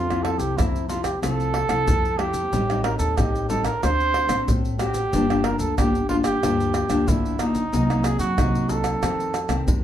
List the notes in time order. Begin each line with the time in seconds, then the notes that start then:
Already playing: F2 F3 F4 A4
0.10 A3 C4 E4, pandeiro, tamborim, maracas, surdo
0.23 A4, pandeiro, tamborim
0.38 C2 G4, pandeiro, maracas
0.57 F2 C3 A3 C4 E4, pandeiro, tamborim, maracas, surdo
0.76 pandeiro, maracas
0.89 A3 C4 E4 F4, pandeiro, maracas
1.03 G4, pandeiro, tamborim, maracas, surdo
1.22 C2 F3 A3 C4 E4 A4, pandeiro, tamborim, maracas, surdo
1.40 pandeiro, maracas
1.54 pandeiro, tamborim
1.69 C2 A3 C4 E4, pandeiro, tamborim, maracas, surdo
1.87 F2 C3, pandeiro, maracas, surdo
2.05 pandeiro, maracas
2.18 A3 C4 E4 G4, pandeiro, tamborim
2.34 pandeiro, maracas, surdo
2.53 A1 A2 G3 C4 D#4, pandeiro, maracas, surdo
2.70 G3 C4 D#4, pandeiro, tamborim, maracas, surdo
2.84 A#4, pandeiro, tamborim
2.98 D#2 A4, pandeiro, maracas
3.17 A1 A2 G3 C4 D#4 G4, pandeiro, tamborim, maracas, surdo
3.35 pandeiro, maracas
3.49 G3 C4 D#4 A4, pandeiro, maracas, surdo
3.64 A#4, pandeiro, tamborim, maracas, surdo
3.83 D2 D3 A3 C4 F#4 C5, pandeiro, tamborim, maracas, surdo
4.00 pandeiro, maracas
4.14 pandeiro, tamborim
4.29 A1 A3 C4 F#4, pandeiro, tamborim, maracas, surdo
4.48 A1 A2, pandeiro, maracas, surdo
4.65 pandeiro, maracas
4.79 A3 C4 F#4 G4, pandeiro, tamborim, maracas
4.94 pandeiro, maracas, surdo
5.13 G1 G2 F3 A#3 D4, pandeiro, maracas, surdo
5.30 F3 A#3 D4, pandeiro, tamborim, maracas, surdo
5.44 A#4, pandeiro, tamborim
5.59 D2 A4, pandeiro, maracas
5.78 G1 D3 F3 A#3 D4 G4, pandeiro, tamborim, maracas, surdo
5.95 pandeiro, maracas
6.09 F3 A#3 D4 F4, pandeiro, surdo
6.24 G4, pandeiro, tamborim, maracas, surdo
6.43 D2 G2 F3 A#3 D4, pandeiro, tamborim, maracas, surdo
6.60 pandeiro, maracas
6.74 pandeiro, tamborim, maracas
6.89 D2 F3 A#3 D4, pandeiro, tamborim, maracas, surdo
7.08 G1 D3 E4, pandeiro, maracas, surdo
7.25 pandeiro, maracas
7.39 F3 A#3 D4 D#4, pandeiro, tamborim, maracas
7.55 pandeiro, maracas, surdo
7.72 C2 C3 F#3 A#3 D#4, pandeiro, maracas, surdo
7.90 F#3 A#3 D#4, pandeiro, tamborim, maracas, surdo
8.04 G#4, pandeiro, tamborim, maracas
8.19 F#2 F#4, pandeiro, maracas
8.37 C2 C3 F#3 A#3 D#4, pandeiro, tamborim, maracas, surdo
8.55 pandeiro, maracas
8.69 A4, pandeiro, maracas, surdo
8.84 pandeiro, tamborim, maracas, surdo
9.03 F2 D#3 A3 C4, pandeiro, tamborim, maracas, surdo
9.20 pandeiro, maracas
9.34 pandeiro, tamborim, maracas
9.48 C2 D#3 A3 C4, pandeiro, tamborim, maracas, surdo
9.67 F2 C3, pandeiro, maracas, surdo